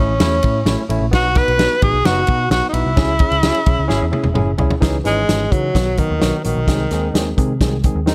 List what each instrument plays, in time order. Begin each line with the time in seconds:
Already playing: tine electric piano A3 C#4
0.00 tenor saxophone C#4, tine electric piano E4
0.09 picked electric bass A1
0.20 picked electric bass E2, tine electric piano A3 C#4 E4, snare, ride
0.43 picked electric bass A2, tine electric piano A3 C#4 E4, kick, ride
0.65 picked electric bass A1, tine electric piano A3 C#4 E4, snare, ride
0.89 picked electric bass A1, tine electric piano A3 C#4 E4, ride
1.01 picked electric bass A#1
1.11 picked electric bass B1, tine electric piano B3 D#4 F#4, tenor saxophone F#4, kick, snare, ride
1.35 tine electric piano B3 D#4 F#4, tenor saxophone B4, kick, snare, ride
1.48 picked electric bass B1, ride
1.57 tine electric piano B3 D#4 F#4, snare, ride
1.81 picked electric bass A1, tine electric piano B3 D#4 F#4, tenor saxophone G#4, kick, ride
1.93 picked electric bass B1
2.05 picked electric bass F#1, tine electric piano B3 D#4 F#4, tenor saxophone F#4, snare, ride
2.27 picked electric bass B2, tine electric piano B3 D#4 F#4, kick, ride
2.50 picked electric bass B1, tine electric piano B3 D#4 F#4, tenor saxophone F#4, snare, ride
2.69 tenor saxophone D#4
2.73 picked electric bass B1, tine electric piano B3 D#4 F#4, tenor saxophone E4, ride
2.85 picked electric bass C2
2.97 picked electric bass C#2, tine electric piano C#4 E4 G#4, kick, snare, ride
3.19 tine electric piano C#4 E4 G#4, kick, ride
3.32 picked electric bass C#2, ride
3.43 tine electric piano C#4 E4 G#4, snare, ride
3.54 ride
3.66 picked electric bass B1, tine electric piano C#4 E4 G#4, kick, ride
3.79 picked electric bass C#2
3.88 picked electric bass G#1, tine electric piano C#4 E4 G#4, snare
4.02 picked electric bass E2
4.12 tine electric piano C#4 E4 G#4, high tom
4.24 picked electric bass E1, high tom
4.34 picked electric bass F#1, tine electric piano C#4 E4 G#4, mid tom
4.58 picked electric bass C2, tine electric piano C#4 E4 G#4, floor tom
4.71 floor tom
4.80 picked electric bass C#2, tine electric piano E3 C#4 D#4 G#4, kick, snare, closed hi-hat
5.04 picked electric bass G#1, tine electric piano E3 C#4 D#4 G#4, tenor saxophone G#3, snare, closed hi-hat
5.27 picked electric bass G#1, tine electric piano E3 C#4 D#4 G#4, snare, closed hi-hat
5.51 picked electric bass C#3, tine electric piano E3 C#4 D#4 G#4, tenor saxophone F#3, kick, closed hi-hat
5.74 picked electric bass B1, tine electric piano D#3 F#3 B3 F#4, kick, snare, closed hi-hat
5.97 tine electric piano D#3 F#3 B3 F#4, tenor saxophone D#3, kick, closed hi-hat
6.11 picked electric bass D#2
6.19 picked electric bass B1, tine electric piano D#3 F#3 B3 F#4, snare, closed hi-hat
6.44 picked electric bass A#1, tine electric piano D#3 F#3 B3 F#4, tenor saxophone D#3, closed hi-hat
6.57 picked electric bass B1
6.67 picked electric bass C2, tine electric piano D#3 G#3 C4 G#4, kick, snare, closed hi-hat
6.91 picked electric bass D#2, tine electric piano D#3 G#3 C4 G#4, snare, closed hi-hat
7.14 picked electric bass D#2, tine electric piano D#3 G#3 C4 G#4, snare, closed hi-hat
7.37 picked electric bass C3, tine electric piano D#3 G#3 C4 G#4, kick, closed hi-hat
7.61 picked electric bass C2, tine electric piano D#3 G#3 C4 G#4, kick, snare, closed hi-hat
7.83 tine electric piano D#3 G#3 C4 G#4, kick, closed hi-hat
7.95 picked electric bass D#2
8.06 tine electric piano D#3 G#3 C4 D#4, snare, closed hi-hat